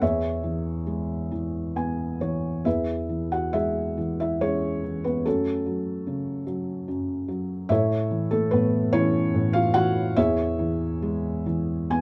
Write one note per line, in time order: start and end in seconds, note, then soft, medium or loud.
0.01 2.61 E2 medium
0.01 1.73 G#4 medium
0.01 1.73 C#5 medium
0.01 1.72 E5 medium
0.43 1.30 E3 medium
0.87 2.61 G#3 medium
1.31 2.19 E3 medium
1.76 2.63 B3 medium
1.76 2.18 G#5 medium
2.21 2.64 E3 soft
2.21 2.62 C#5 medium
2.65 5.22 E2 medium
2.65 3.28 E4 medium
2.65 3.28 G#4 medium
2.65 3.28 B4 medium
2.65 3.34 E5 medium
3.09 3.96 E3 soft
3.32 3.53 F#4 medium
3.32 3.52 F#5 medium
3.53 4.40 G#3 soft
3.53 4.16 E4 medium
3.53 4.16 G#4 medium
3.53 4.19 E5 medium
3.97 4.82 E3 soft
4.20 4.41 E4 medium
4.20 4.42 E5 medium
4.41 5.23 G#3 medium
4.41 5.02 C#4 medium
4.41 5.02 G#4 medium
4.41 5.07 C#5 medium
4.84 5.24 E3 soft
5.04 5.24 B3 medium
5.04 5.26 B4 medium
5.25 6.87 F#2 medium
5.25 6.44 A3 soft
5.25 6.44 C#4 soft
5.25 6.44 F#4 soft
5.25 6.44 A4 medium
5.66 6.45 F#3 soft
6.07 7.66 C#3 soft
6.47 7.27 F#3 soft
6.88 7.67 F#2 medium
7.28 7.68 F#3 soft
7.69 8.51 A2 medium
7.69 8.29 E4 medium
7.69 8.29 A4 medium
7.69 8.29 C#5 medium
7.69 8.33 E5 medium
8.11 8.91 E3 medium
8.31 8.51 A3 medium
8.31 8.52 A4 medium
8.51 9.33 A2 medium
8.51 8.91 B3 medium
8.51 8.90 B4 medium
8.93 9.74 E3 medium
8.93 9.51 C#4 medium
8.93 9.51 E4 medium
8.93 9.56 C#5 loud
9.34 10.15 A2 medium
9.53 9.75 F4 medium
9.53 9.73 F5 loud
9.74 10.16 E3 medium
9.74 10.14 F#4 medium
9.74 10.18 F#5 loud
10.16 12.01 E2 medium
10.16 11.87 E4 medium
10.16 11.87 G#4 medium
10.16 11.87 C#5 medium
10.16 11.86 E5 loud
10.59 11.45 E3 medium
11.02 12.01 G#3 medium
11.46 12.01 E3 medium
11.90 12.01 B3 medium
11.90 12.01 G#5 medium